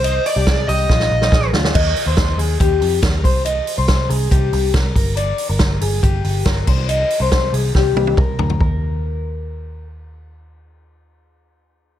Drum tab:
CC |----------------|x---------------|----------------|--------------x-|
RD |x---x-----------|----x---x---x---|x---x---x---x---|x---x---x---x---|
HH |p-o-p-o---------|--o-p-o-p-o-p-o-|p-o-p-o-p-o-p-o-|p-o-p-o-p-o-p---|
SD |----o---oo-oo-oo|----o-------o---|----o-------o---|----o-------o---|
T1 |----------------|----------------|----------------|----------------|
T2 |----------------|----------------|----------------|----------------|
FT |----------------|----------------|----------------|----------------|
BD |----o---o---o---|o---o---o---o-o-|----o---o---o-o-|----o---o---o-o-|

CC |----------------|----------------|----------------|
RD |x---x-----------|----------------|----------------|
HH |p-o-p-o---------|----------------|----------------|
SD |----o---o-------|----------------|----------------|
T1 |----------oo----|----------------|----------------|
T2 |------------o---|----------------|----------------|
FT |--------------oo|----------------|----------------|
BD |----o---o---o---|o---------------|----------------|